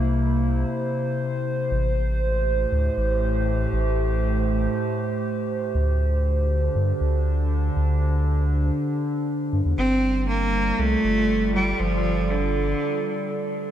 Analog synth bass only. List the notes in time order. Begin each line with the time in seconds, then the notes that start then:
Already playing: C2
1.71 A1
2.72 D2
2.97 A1
3.73 A1
5.75 D2
6.76 G2
7.01 D2
7.76 D2
9.53 G2
9.65 E2
9.78 G1
10.79 C2
11.04 G1
11.80 G1